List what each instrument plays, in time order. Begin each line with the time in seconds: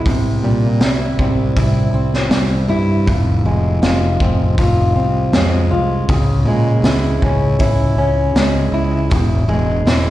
0.05 fingered electric bass C2, steel-string acoustic guitar C3, kick, open hi-hat
0.43 fingered electric bass A#2, steel-string acoustic guitar G3
0.81 fingered electric bass C2, steel-string acoustic guitar E4, snare, open hi-hat
1.18 fingered electric bass C2, steel-string acoustic guitar C4, kick
1.56 fingered electric bass C2, steel-string acoustic guitar E4, kick, open hi-hat
1.93 fingered electric bass C2, steel-string acoustic guitar C4
2.14 snare
2.30 fingered electric bass C2, steel-string acoustic guitar G3, snare, open hi-hat
2.69 fingered electric bass G2, steel-string acoustic guitar E4
3.07 fingered electric bass F1, steel-string acoustic guitar F2, kick, open hi-hat
3.45 fingered electric bass F1, steel-string acoustic guitar G#3
3.82 fingered electric bass F1, steel-string acoustic guitar F4, snare, open hi-hat
4.20 fingered electric bass F1, steel-string acoustic guitar C4, kick
4.58 fingered electric bass F1, steel-string acoustic guitar F4, kick, open hi-hat
4.95 fingered electric bass C2, steel-string acoustic guitar C4
5.33 fingered electric bass F2, steel-string acoustic guitar G#3, snare, open hi-hat
5.71 fingered electric bass C2, steel-string acoustic guitar F4
6.09 fingered electric bass C#2, steel-string acoustic guitar C#3, kick, open hi-hat
6.45 fingered electric bass A#2, steel-string acoustic guitar G#3
6.83 fingered electric bass C#2, steel-string acoustic guitar E4, snare, open hi-hat
7.22 fingered electric bass C#2, steel-string acoustic guitar C#4, kick
7.59 fingered electric bass C#2, steel-string acoustic guitar E4, kick, open hi-hat
7.96 fingered electric bass C#2, steel-string acoustic guitar C#4
8.35 fingered electric bass C#2, steel-string acoustic guitar G#3, snare, open hi-hat
8.72 fingered electric bass C#2, steel-string acoustic guitar E4
9.10 fingered electric bass E1, steel-string acoustic guitar E2, kick, open hi-hat
9.48 fingered electric bass E1, steel-string acoustic guitar G#3
9.85 fingered electric bass E1, steel-string acoustic guitar E4, snare, open hi-hat